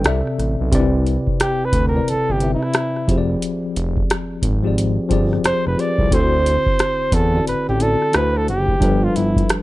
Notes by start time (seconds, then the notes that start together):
0.03 C2 C3 C4 A4 D5, cross-stick, closed hi-hat
0.07 E5
0.27 cross-stick
0.38 A1, cross-stick, closed hi-hat
0.60 B1
0.71 C2 C3 C4 D4 B4 D5, kick, closed hi-hat
0.80 E4
1.07 closed hi-hat
1.27 kick
1.40 G4, cross-stick, closed hi-hat
1.65 B4
1.72 D2, kick, closed hi-hat
1.88 A#4
1.93 C3 C4 E4 B4 D5
2.08 G1 A4, closed hi-hat
2.29 G1 G4
2.39 C3 C4 E4 B4 E5, closed hi-hat
2.54 E4
2.63 cross-stick
2.74 cross-stick, closed hi-hat
2.96 cross-stick
3.07 F1 F3 C4 G4 G#4 C5, kick, closed hi-hat
3.18 D5
3.42 closed hi-hat
3.76 F1, closed hi-hat
3.97 kick
4.10 cross-stick, closed hi-hat
4.42 G#1, kick, closed hi-hat
4.63 F3 C4 G4 G#4
4.67 D5
4.78 closed hi-hat
5.09 G1 F3 C4 G4 G#4, kick, closed hi-hat
5.13 D5
5.33 cross-stick
5.44 F1 C5, cross-stick, closed hi-hat
5.66 F1 B4, cross-stick
5.76 F3 C4 G4 G#4 B4 D5, closed hi-hat
5.98 C2, kick
6.10 D2 D3 C4 E4 F#4, kick, closed hi-hat
6.14 A4 C5
6.20 C5
6.46 closed hi-hat
6.66 kick
6.79 cross-stick, closed hi-hat
7.12 E2 A4, kick, closed hi-hat
7.33 D3 C4 E4 F#4
7.37 D5
7.47 A1 B4, closed hi-hat
7.68 A1 G4
7.79 D3 C4 E4 F#4 A4, closed hi-hat
7.83 D5
8.02 cross-stick
8.13 D2 D3 D4 E4 F#4 B4 C5, cross-stick, closed hi-hat
8.36 A4, cross-stick
8.48 F#1 G4, closed hi-hat
8.68 kick
8.80 G1 F3 G3 D4 A4, kick, closed hi-hat
8.84 B4
9.04 F4
9.16 G1 E4, closed hi-hat
9.36 kick, closed hi-hat
9.49 cross-stick, closed hi-hat